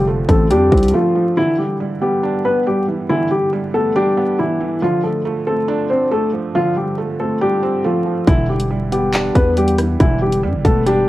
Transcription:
Already playing: F1 D3 F3 A3 C4 D4
0.07 A3
0.29 A1 A3 C4 A4, kick, closed hi-hat
0.50 F2 G3 D4 G4, closed hi-hat
0.72 C2 C4, kick, closed hi-hat
0.77 closed hi-hat
0.83 closed hi-hat
0.88 closed hi-hat
0.94 F3 A3 F4
1.15 F3
1.37 D3 E3 E4
1.58 E3 G3 G4
1.80 G3
2.01 G3 B3 G4
2.23 D4
2.45 B3 B4
2.66 G3 G4
2.88 E3
3.09 D3 E3 E4
3.31 E3 G3 G4
3.53 G3
3.74 A3 B3 A4
3.96 G3 D4 G4
4.17 B3
4.39 E3 G3 E4
4.60 E3
4.82 D3 F3 F4
5.03 F3 A3 A4
5.25 A3
5.47 A3 C4 A4
5.68 D4
5.90 C4 C5
6.12 A3 A4
6.33 F3
6.55 D3 F3 F4
6.76 F3 G3 G4
6.98 A3
7.20 A3 C4 A4
7.41 G3 D4 G4
7.63 C4
7.84 F3 A3 F4
8.06 F3
8.27 E1 D3 E3 E4, kick, closed hi-hat
8.49 E3 G3 G4
8.60 closed hi-hat
8.70 G3
8.92 G3 B3 G4, closed hi-hat
9.14 D4, clap, closed hi-hat
9.35 E2 B3 B4, kick, closed hi-hat
9.57 G3 G4, closed hi-hat
9.68 closed hi-hat
9.78 E3, cross-stick, closed hi-hat
10.00 E1 D3 E3 E4, kick, closed hi-hat
10.21 E3 G3 G4
10.32 closed hi-hat
10.43 G2 G3
10.54 E1
10.65 E1 A3 B3 A4, kick, closed hi-hat
10.86 G3 D4 G4, closed hi-hat

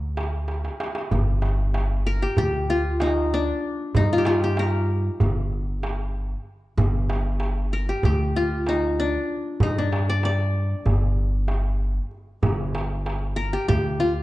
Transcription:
Already playing: D2 D4
0.17 darbuka tek
0.48 darbuka tek
0.65 darbuka ka
0.80 darbuka tek
0.95 darbuka ka
1.11 G1, darbuka dum
1.42 darbuka tek
1.74 darbuka tek
2.06 A#4, darbuka ka
2.22 G4
2.37 D2 G4, darbuka dum
2.68 F4, darbuka ka
3.00 D#4, darbuka tek
3.34 D4
3.95 G2 D#4, darbuka dum
4.13 F4
4.18 G4
4.25 F4, darbuka tek
4.44 G4
4.57 A#4, darbuka tek
4.89 darbuka ka
5.20 G1, darbuka dum
5.51 darbuka ka
5.83 darbuka tek
6.78 G1, darbuka dum
7.10 darbuka tek
7.40 darbuka tek
7.72 A#4, darbuka ka
7.89 G4
8.03 D2 G4, darbuka dum
8.34 F4, darbuka ka
8.67 D#4, darbuka tek
9.00 D4
9.60 G2 D#4, darbuka dum
9.78 D4
9.92 darbuka tek
10.09 D5
10.23 D5, darbuka tek
10.54 darbuka ka
10.85 G1, darbuka dum
11.17 darbuka ka
11.48 darbuka tek
12.11 darbuka ka
12.43 G1, darbuka dum
12.75 darbuka tek
13.06 darbuka tek
13.36 A#4, darbuka ka
13.53 G4
13.68 D2 G4, darbuka dum
14.00 F4, darbuka ka

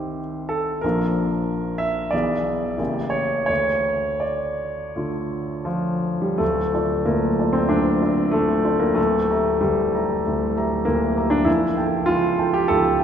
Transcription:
Already playing: C2 D#3 C4 G4 C5
0.49 A4
0.81 A#1 F3 D4 A#4
1.78 E5
2.11 B1 E3 B3 G#4 D5
2.77 A1 C#3 A#3 G4
3.10 C#5
3.46 D2 C#5
4.20 D5
4.96 D3 A3 F4
5.65 F3
6.22 G3
6.38 D1 D2 A3
6.74 F4 D5 A5
7.05 D1 D2 A#3
7.39 F4 D5 A5
7.53 C4
7.69 D1 D2 D4
8.02 F4 D5 A5
8.31 D1 D2 A3
8.64 F4 D5 A5
8.79 A#3
8.94 D1 D2 A3
9.30 G4 E5 A#5
9.61 D1 D2 G3
9.94 G4 E5 A#5
10.27 D1 D2
10.57 G4 E5 A#5
10.85 D1 D2 A#3
11.17 G4 E5 A#5
11.30 D4
11.44 C#1 C#2 E4
11.77 A4 G5 A5
12.06 C#1 C#2 F4
12.39 A4 G5 A5
12.53 G4
12.68 C#1 C#2 A4
12.99 A4 G5 A5

